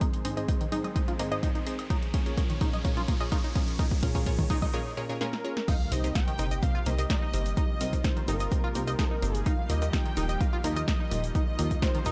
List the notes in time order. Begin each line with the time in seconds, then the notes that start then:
Already playing: D#3 G#3 C4 G#4 C5, riser
0.01 G#2 C4 D#4 G#4 C5 D#5, kick, closed hi-hat
0.14 closed hi-hat
0.25 G#2 C4 D#4 G#4 C5 D#5, open hi-hat, high conga
0.37 G#2 C4 D#4 G#4 C5 D#5, closed hi-hat
0.48 G#2 C4 D#4 G#4 C5 D#5, kick, closed hi-hat
0.61 D#3, closed hi-hat
0.72 G#2 C4 D#4 G#4 C5 D#5, open hi-hat, low conga
0.84 D#5, closed hi-hat, low conga, high woodblock
0.96 G#2 C4 D#4 G#4 C5 D#5, kick, closed hi-hat
1.08 F4, closed hi-hat, high conga
1.19 G#2 A#3 C4 D#4 G#4 C5 D#5, open hi-hat
1.32 G#2 C4 D#4 G#4 C5 D#5, closed hi-hat
1.43 G#2 C4 D#4 G#4 C5 D#5, kick, closed hi-hat
1.55 D#4, closed hi-hat
1.67 C4 D#4 G#4 C5 D#5, open hi-hat
1.79 closed hi-hat, high woodblock
1.90 A#2 F3 A#3 C#4 D#4 F4 G#4 A#4 C#5, kick, closed hi-hat
2.02 closed hi-hat
2.14 A#2 C#4 F4 G#4 A#4 C#5, kick, open hi-hat, high conga
2.26 A#2 C#4 F4 G#4 A#4 C#5, closed hi-hat
2.37 A#2 C#4 F4 G#4 A#4 C#5, kick, closed hi-hat
2.50 D#3, closed hi-hat
2.61 A#2 C#4 D#4 F4 G#4 A#4 C#5, kick, open hi-hat, low conga
2.73 D#5, closed hi-hat, low conga
2.85 A#2 C#4 F4 G#4 A#4 C#5, kick, closed hi-hat
2.97 F4, closed hi-hat, high conga, low conga
3.08 A#2 A#3 C#4 F4 G#4 A#4 C#5, kick, open hi-hat
3.20 A#2 C#4 F4 G#4 A#4 C#5 D#5, closed hi-hat
3.32 A#2 C#4 D#4 F4 G#4 A#4 C#5, kick, closed hi-hat
3.44 D#4, closed hi-hat
3.55 A#2 C#4 F4 G#4 A#4 C#5, kick, open hi-hat
3.68 closed hi-hat
3.79 A#2 C#4 D#4 F4 G#4 A#4 C#5, kick, closed hi-hat
3.91 kick, closed hi-hat
4.03 A#2 C#4 F4 G#4 A#4 C#5, kick, open hi-hat, high conga
4.15 A#2 C#4 F4 G#4 A#4 C#5, kick, closed hi-hat
4.26 A#2 C#4 F4 G#4 A#4 C#5, kick, closed hi-hat
4.39 D#3, kick, closed hi-hat
4.50 A#2 C#4 D#4 F4 G#4 A#4 C#5, kick, open hi-hat, low conga
4.62 D#5, kick, closed hi-hat, low conga, high woodblock
4.74 A#2 C#4 F4 G#4 A#4 C#5
4.97 A#2 C#4 F4 G#4 A#4 C#5
5.09 A#2 C#4 F4 G#4 A#4 C#5
5.21 A#2 C#4 F4 G#4 A#4 C#5, snare
5.33 snare
5.44 C#4 F4 G#4 A#4 C#5
5.57 snare
5.68 C3 G3 A#3 C4 D#4 G4 A#4 C5 F5, kick, closed hi-hat, crash, impact, shaker
5.92 C2 C3 C4 D#4 G4 A#4 C5 D#5, open hi-hat, shaker
6.04 C3 C4 D#4 G4 A#4 C5, closed hi-hat, shaker
6.15 C3 C4 D#4 G4 A#4 C5 G5, kick, snare, closed hi-hat, shaker
6.28 D#3, closed hi-hat
6.39 G1 C3 C4 D#4 G4 A#4 C5, open hi-hat, shaker
6.51 D#5, closed hi-hat, shaker
6.62 C3 C4 D#4 G4 A#4 C5 F5, kick, closed hi-hat, shaker
6.75 F4
6.86 C2 C3 A#3 C4 D#4 G4 A#4 C5 D#5, open hi-hat, shaker
6.98 C3 C4 D#4 G4 A#4 C5 D#5, closed hi-hat, shaker
7.10 C3 C4 D#4 G4 A#4 C5 D#5, kick, snare, closed hi-hat, shaker
7.22 D#4
7.34 G1 C3 C4 D#4 G4 A#4 C5, open hi-hat, shaker
7.46 closed hi-hat, shaker
7.57 C3 C4 D#4 F4 G4 A#4 C5 D#5, kick, closed hi-hat, shaker
7.81 C2 C3 C4 D#4 G4 A#4 C5, open hi-hat, shaker
7.93 C3 C4 D#4 G4 A#4 C5, kick, closed hi-hat, shaker
8.04 C3 C4 D#4 G4 A#4 C5, kick, snare, closed hi-hat, shaker
8.17 D#3, closed hi-hat
8.28 G1 C3 C4 D#4 G4 A#4 C5, open hi-hat, shaker
8.40 D#5, closed hi-hat, shaker
8.51 C3 C4 D#4 G4 A#4 C5, kick, closed hi-hat, shaker
8.64 F4
8.75 C2 C3 A#3 C4 D#4 G4 A#4 C5, open hi-hat, shaker
8.87 C3 C4 D#4 G4 A#4 C5 D#5, closed hi-hat, shaker
8.99 C3 C4 D#4 G4 A#4 C5, kick, snare, closed hi-hat, shaker
9.11 D#4
9.22 G1 C4 D#4 G4 A#4 C5, open hi-hat, shaker
9.35 G#4, closed hi-hat, shaker
9.46 D#3 F3 D#4 F4 G4 A#4 D#5 F5, kick, closed hi-hat, shaker
9.70 D#2 D#3 D#4 F4 G4 A#4 D#5, open hi-hat, shaker
9.82 D#3 D#4 F4 G4 A#4 D#5, closed hi-hat, shaker
9.93 D#3 D#4 F4 G4 A#4 D#5 G5, kick, snare, closed hi-hat, shaker
10.06 D#3, closed hi-hat
10.17 D#1 D#3 D#4 F4 G4 A#4 D#5, open hi-hat, shaker
10.29 D#5, closed hi-hat, shaker
10.40 D#3 D#4 F4 G4 A#4 D#5 F5, kick, closed hi-hat, shaker
10.53 F4
10.64 D#2 D#3 A#3 D#4 F4 G4 A#4 D#5, open hi-hat, shaker
10.76 D#3 D#4 F4 G4 A#4 D#5, closed hi-hat, shaker
10.88 D#3 D#4 F4 G4 A#4 D#5, kick, snare, closed hi-hat, shaker
11.00 D#4
11.11 D#1 D#3 D#4 F4 G4 A#4 D#5, open hi-hat, shaker
11.24 closed hi-hat, shaker
11.35 D#3 D#4 F4 G4 A#4 D#5, kick, closed hi-hat, shaker
11.59 D#2 D#3 D#4 F4 G4 A#4 D#5, open hi-hat, shaker
11.71 D#3 D#4 F4 G4 A#4 D#5, kick, closed hi-hat, shaker
11.82 D#3 D#4 F4 G4 A#4 C5 D#5, kick, snare, closed hi-hat, shaker
11.95 D#3, closed hi-hat
12.05 D#1 D#3 D#4 F4 G4 A#4 D#5, open hi-hat, shaker